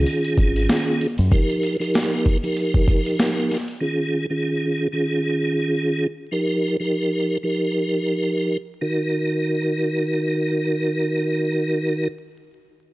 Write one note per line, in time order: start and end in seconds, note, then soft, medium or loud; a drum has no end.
0.00 1.07 D#3 medium
0.00 1.07 C#4 medium
0.00 1.07 F4 medium
0.00 1.07 G#4 loud
0.06 closed hi-hat medium
0.25 closed hi-hat soft
0.38 0.66 G#1 medium
0.38 kick loud
0.38 closed hi-hat medium
0.56 closed hi-hat medium
0.69 snare loud
0.69 closed hi-hat medium
1.01 closed hi-hat medium
1.18 1.31 F#2 loud
1.18 closed hi-hat medium
1.31 1.76 F3 medium
1.31 1.76 D#4 medium
1.31 1.77 G4 medium
1.31 1.77 A#4 loud
1.31 kick loud
1.31 closed hi-hat loud
1.50 closed hi-hat soft
1.63 closed hi-hat medium
1.80 2.37 F3 medium
1.80 2.37 D#4 medium
1.80 2.38 G4 medium
1.80 2.38 A#4 loud
1.80 closed hi-hat medium
1.95 snare loud
1.95 closed hi-hat medium
2.26 kick medium
2.26 closed hi-hat medium
2.43 3.57 F3 medium
2.43 3.57 D#4 medium
2.43 3.57 G4 medium
2.43 3.58 A#4 loud
2.43 closed hi-hat medium
2.57 closed hi-hat medium
2.74 kick medium
2.74 closed hi-hat soft
2.88 kick medium
2.88 closed hi-hat medium
3.06 closed hi-hat medium
3.19 snare loud
3.19 closed hi-hat medium
3.51 snare soft
3.51 closed hi-hat medium
3.68 closed hi-hat medium
3.81 4.26 D#3 medium
3.81 4.26 C#4 medium
3.81 4.26 F4 medium
3.81 4.27 G#4 loud
4.30 4.87 D#3 medium
4.30 4.88 C#4 medium
4.30 4.88 F4 medium
4.30 4.88 G#4 loud
4.92 6.07 D#3 medium
4.92 6.07 C#4 medium
4.92 6.07 F4 medium
4.92 6.07 G#4 loud
6.31 6.76 F3 medium
6.31 6.77 D#4 medium
6.31 6.77 G4 medium
6.31 6.77 A#4 loud
6.80 7.37 F3 medium
6.80 7.37 D#4 medium
6.80 7.38 G4 medium
6.80 7.38 A#4 loud
7.43 8.57 F3 medium
7.43 8.57 D#4 medium
7.43 8.57 G4 medium
7.43 8.58 A#4 medium
8.81 12.08 D#3 medium
8.81 12.08 D#4 medium
8.81 12.08 F#4 medium
8.81 12.08 A#4 medium